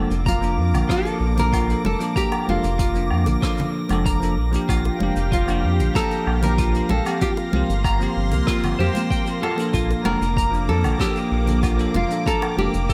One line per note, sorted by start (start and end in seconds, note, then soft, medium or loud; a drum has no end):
0.00 0.12 F3 medium
0.00 0.12 A#3 medium
0.00 4.33 A#3 medium
0.00 12.93 A#3 medium
0.00 0.13 D4 medium
0.00 0.13 A4 medium
0.00 4.33 D6 loud
0.00 12.93 A#6 medium
0.10 0.59 F1 medium
0.10 closed hi-hat soft
0.10 cabasa medium
0.26 0.92 F4 medium
0.26 0.55 A#5 medium
0.26 kick loud
0.26 closed hi-hat medium
0.26 cabasa medium
0.41 0.85 F3 medium
0.41 0.86 A#3 medium
0.41 0.87 D4 medium
0.41 closed hi-hat soft
0.41 cabasa soft
0.57 0.74 F2 medium
0.73 0.83 A#1 medium
0.73 closed hi-hat medium
0.73 low conga medium
0.73 cabasa medium
0.73 low woodblock medium
0.88 1.32 F3 medium
0.88 1.33 A#3 medium
0.88 1.34 D4 medium
0.88 1.18 F4 medium
0.88 1.39 A4 loud
0.88 kick loud
0.88 cross-stick medium
0.88 closed hi-hat medium
0.88 cabasa medium
1.05 closed hi-hat soft
1.05 high bongo soft
1.05 cabasa soft
1.20 1.75 A#1 medium
1.36 1.64 F3 medium
1.36 1.65 A#3 medium
1.36 1.66 D4 medium
1.36 1.82 A#4 loud
1.36 closed hi-hat medium
1.36 low conga medium
1.36 cabasa medium
1.40 1.66 A4 medium
1.53 1.81 F4 medium
1.53 kick loud
1.53 closed hi-hat medium
1.53 cabasa medium
1.53 low woodblock medium
1.68 1.86 F3 medium
1.68 1.86 A#3 medium
1.68 1.87 D4 medium
1.68 1.88 A4 medium
1.68 closed hi-hat medium
1.68 cabasa medium
1.85 1.95 F1 loud
1.85 2.17 A4 loud
1.85 high bongo medium
1.85 high conga loud
1.99 2.43 F3 medium
1.99 2.44 A#3 medium
1.99 2.44 D4 medium
1.99 2.45 A4 medium
1.99 closed hi-hat medium
1.99 cabasa medium
2.16 2.49 G4 loud
2.16 2.44 A#5 medium
2.16 kick loud
2.16 closed hi-hat medium
2.16 cabasa medium
2.32 high bongo medium
2.32 cabasa soft
2.32 low woodblock medium
2.47 2.58 F1 medium
2.47 2.65 F3 medium
2.47 2.65 A#3 medium
2.47 2.66 D4 medium
2.47 3.08 F4 medium
2.47 2.67 A4 medium
2.47 high conga loud
2.64 3.12 F1 loud
2.64 closed hi-hat soft
2.64 cabasa medium
2.79 3.08 F4 loud
2.79 kick loud
2.79 closed hi-hat medium
2.79 cabasa medium
2.94 3.38 F3 medium
2.94 3.39 A#3 medium
2.94 3.39 D4 medium
2.94 closed hi-hat soft
2.94 cabasa soft
3.11 3.28 F2 loud
3.11 low woodblock medium
3.26 3.36 A#1 medium
3.26 closed hi-hat soft
3.26 high bongo medium
3.26 low conga medium
3.26 cabasa medium
3.40 3.85 F3 medium
3.40 3.86 A#3 medium
3.40 3.87 D4 medium
3.40 3.71 F4 medium
3.40 3.87 A4 medium
3.40 kick loud
3.40 cross-stick medium
3.40 closed hi-hat medium
3.40 cabasa medium
3.58 closed hi-hat soft
3.58 low conga medium
3.58 cabasa soft
3.89 4.39 F1 medium
3.89 4.17 F3 medium
3.89 4.18 A#3 medium
3.89 4.18 D4 medium
3.89 4.19 A4 medium
3.89 closed hi-hat medium
3.89 high conga loud
3.89 cabasa medium
3.89 low woodblock medium
4.06 4.34 A#5 medium
4.06 kick loud
4.06 closed hi-hat medium
4.06 cabasa medium
4.20 4.35 F3 medium
4.20 4.35 A#3 medium
4.20 4.36 D4 medium
4.20 closed hi-hat soft
4.20 cabasa soft
4.24 4.37 A4 loud
4.37 4.57 A#1 loud
4.37 7.19 G4 medium
4.37 9.70 F5 medium
4.37 7.19 G5 loud
4.52 4.96 F3 medium
4.52 4.97 A#3 medium
4.52 4.97 D4 medium
4.52 closed hi-hat medium
4.52 high bongo medium
4.52 cabasa medium
4.56 4.98 G4 loud
4.69 4.89 A#1 loud
4.69 4.97 F4 loud
4.69 kick loud
4.69 closed hi-hat medium
4.69 cabasa medium
4.69 low woodblock medium
4.85 high bongo medium
4.85 cabasa soft
4.99 5.10 F1 medium
4.99 5.17 F3 medium
4.99 5.18 A#3 medium
4.99 5.19 D4 medium
4.99 5.19 G4 medium
4.99 high conga loud
5.16 5.65 F1 loud
5.16 closed hi-hat soft
5.16 cabasa medium
5.32 5.60 F4 medium
5.32 5.98 F4 medium
5.32 kick loud
5.32 closed hi-hat medium
5.32 cabasa medium
5.46 5.90 F3 loud
5.46 5.91 A#3 medium
5.46 5.92 D4 medium
5.46 closed hi-hat soft
5.46 cabasa medium
5.46 low woodblock medium
5.50 5.93 G4 loud
5.64 5.81 F2 medium
5.80 5.89 A#1 medium
5.80 closed hi-hat medium
5.80 low conga medium
5.80 cabasa medium
5.94 6.38 F3 medium
5.94 6.39 A#3 medium
5.94 6.39 D4 medium
5.94 6.40 G4 medium
5.94 6.43 A4 loud
5.94 6.24 A#5 medium
5.94 kick loud
5.94 cross-stick medium
5.94 closed hi-hat medium
5.94 cabasa medium
6.11 closed hi-hat soft
6.11 high bongo soft
6.11 cabasa soft
6.27 6.81 A#1 medium
6.27 low woodblock medium
6.41 6.69 F3 medium
6.41 6.70 A#3 medium
6.41 6.71 D4 medium
6.41 6.71 G4 medium
6.41 6.87 A#4 loud
6.41 closed hi-hat medium
6.41 low conga medium
6.41 cabasa medium
6.58 6.87 F4 loud
6.58 kick loud
6.58 closed hi-hat medium
6.58 cabasa medium
6.73 6.91 F3 medium
6.73 6.91 A#3 medium
6.73 6.92 D4 medium
6.73 6.93 G4 medium
6.73 closed hi-hat medium
6.73 cabasa soft
6.89 7.00 A#1 loud
6.89 7.22 A4 loud
6.89 high bongo medium
6.89 high conga medium
7.05 7.49 F3 medium
7.05 7.49 A#3 medium
7.05 7.50 C4 medium
7.05 7.50 G4 loud
7.05 closed hi-hat medium
7.05 cabasa medium
7.05 low woodblock medium
7.21 12.93 A#3 medium
7.21 7.50 F4 medium
7.21 7.30 G4 loud
7.21 9.72 C6 medium
7.21 kick loud
7.21 closed hi-hat medium
7.21 cabasa medium
7.37 high bongo medium
7.37 cabasa soft
7.52 7.63 C2 medium
7.52 7.70 F3 medium
7.52 7.71 A#3 medium
7.52 7.71 C4 medium
7.52 8.12 F4 medium
7.52 high conga loud
7.56 7.72 G4 medium
7.69 8.07 G1 loud
7.69 closed hi-hat soft
7.69 cabasa medium
7.84 8.13 A#5 medium
7.84 kick loud
7.84 closed hi-hat medium
7.84 cabasa medium
7.84 low woodblock medium
7.99 8.43 F3 medium
7.99 8.44 A#3 medium
7.99 8.44 C4 medium
7.99 8.45 G4 loud
7.99 closed hi-hat soft
7.99 cabasa soft
8.16 8.34 G1 medium
8.32 8.42 C2 medium
8.32 closed hi-hat soft
8.32 high bongo medium
8.32 low conga medium
8.32 cabasa medium
8.46 8.90 F3 medium
8.46 8.91 A#3 medium
8.46 8.92 C4 medium
8.46 8.76 F4 medium
8.46 8.92 G4 medium
8.46 kick loud
8.46 cross-stick medium
8.46 closed hi-hat medium
8.46 cabasa medium
8.63 8.73 G1 medium
8.63 closed hi-hat soft
8.63 low conga medium
8.63 cabasa soft
8.63 low woodblock medium
8.79 8.89 F2 medium
8.79 9.43 G4 medium
8.79 9.07 C5 loud
8.93 9.22 F3 medium
8.93 9.23 A#3 medium
8.93 9.23 C4 medium
8.93 9.24 G4 medium
8.93 closed hi-hat medium
8.93 high conga loud
8.93 cabasa medium
9.10 9.28 G5 medium
9.10 kick loud
9.10 closed hi-hat medium
9.10 cabasa medium
9.25 9.43 F3 medium
9.25 9.44 A#3 medium
9.25 9.44 C4 medium
9.25 9.45 G4 medium
9.25 closed hi-hat soft
9.25 cabasa soft
9.42 9.59 F4 medium
9.42 10.02 A4 loud
9.42 low woodblock medium
9.56 10.01 F3 medium
9.56 10.01 A#3 medium
9.56 10.02 D4 medium
9.56 closed hi-hat medium
9.56 high bongo soft
9.56 cabasa medium
9.60 10.03 A4 medium
9.73 9.94 A#1 loud
9.73 10.02 F4 medium
9.73 12.93 D6 medium
9.73 kick loud
9.73 closed hi-hat medium
9.73 cabasa medium
9.91 high bongo medium
9.91 cabasa medium
10.04 10.15 F1 medium
10.04 10.22 F3 medium
10.04 10.23 A#3 medium
10.04 10.23 D4 medium
10.04 10.24 A4 loud
10.04 10.68 A#4 loud
10.04 high conga loud
10.04 low woodblock medium
10.21 10.70 F1 medium
10.21 closed hi-hat soft
10.21 cabasa medium
10.37 10.66 A#5 medium
10.37 kick loud
10.37 closed hi-hat medium
10.37 cabasa medium
10.51 10.95 F3 medium
10.51 10.96 A#3 medium
10.51 10.97 D4 medium
10.51 closed hi-hat soft
10.51 cabasa soft
10.68 10.86 F2 loud
10.68 11.00 A4 loud
10.84 10.94 A#1 medium
10.84 closed hi-hat soft
10.84 low conga medium
10.84 cabasa medium
10.84 low woodblock medium
10.98 11.43 F3 medium
10.98 11.43 A#3 medium
10.98 11.44 D4 medium
10.98 11.60 G4 medium
10.98 11.17 A4 loud
10.98 kick loud
10.98 cross-stick medium
10.98 closed hi-hat medium
10.98 cabasa medium
11.16 closed hi-hat soft
11.16 high bongo soft
11.16 cabasa soft
11.31 11.86 A#1 medium
11.45 11.74 F3 medium
11.45 11.75 A#3 medium
11.45 11.75 D4 medium
11.45 closed hi-hat medium
11.45 low conga medium
11.45 cabasa medium
11.49 11.76 A4 medium
11.63 11.92 F4 medium
11.63 kick loud
11.63 closed hi-hat medium
11.63 cabasa medium
11.63 low woodblock medium
11.77 11.95 F3 medium
11.77 11.96 A#3 medium
11.77 11.97 D4 medium
11.77 11.97 A4 loud
11.77 closed hi-hat soft
11.77 cabasa medium
11.94 12.05 F1 loud
11.94 12.28 F4 medium
11.94 high bongo medium
11.94 high conga medium
12.08 12.53 F3 medium
12.08 12.54 A#3 medium
12.08 12.54 D4 medium
12.08 12.55 A4 loud
12.08 closed hi-hat medium
12.08 cabasa medium
12.26 12.58 A4 loud
12.26 12.55 A#5 medium
12.26 kick loud
12.26 closed hi-hat medium
12.26 cabasa medium
12.42 high bongo medium
12.42 cabasa medium
12.42 low woodblock medium
12.56 12.68 F1 medium
12.56 12.75 F3 medium
12.56 12.76 A#3 medium
12.56 12.76 D4 medium
12.56 12.93 G4 loud
12.56 12.77 A4 medium
12.56 high conga medium
12.73 12.93 F1 loud
12.73 closed hi-hat soft
12.73 cabasa medium
12.89 12.93 A4 loud
12.89 kick loud
12.89 closed hi-hat medium
12.89 cabasa medium